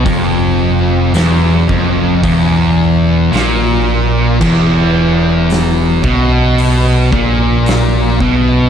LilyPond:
<<
  \new Staff \with { instrumentName = "Distorted electric guitar" } { \clef bass \time 4/4 \key c \lydian \tempo 4 = 55 f,4 e,8 f,8 e,4 ais,4 | e,4. b,4 ais,4 b,8 | }
  \new Staff \with { instrumentName = "Distorted electric guitar" } { \clef bass \time 4/4 \key c \lydian f,4 e,8 f,8 e,4 ais,4 | e,4. b,4 ais,4 b,8 | }
  \new Staff \with { instrumentName = "Distorted electric guitar" } { \clef bass \time 4/4 \key c \lydian f,4 e,8 f,8 e,4 ais,4 | e,4. b,4 ais,4 b,8 | }
  \new Staff \with { instrumentName = "Picked electric bass" } { \clef bass \time 4/4 \key c \lydian f,,4 e,,8 f,,8 e,,4 ais,,4 | e,,4. b,,4 ais,,4 b,,8 | }
  \new DrumStaff \with { instrumentName = "Drums" } \drummode { \time 4/4 <hho bd>4 <hho sn>8 bd8 <hho bd>4 <hho sn>4 | <cymc bd>4 <hho sn>8 bd8 hho8 bd8 <hho sn>8 bd8 | }
>>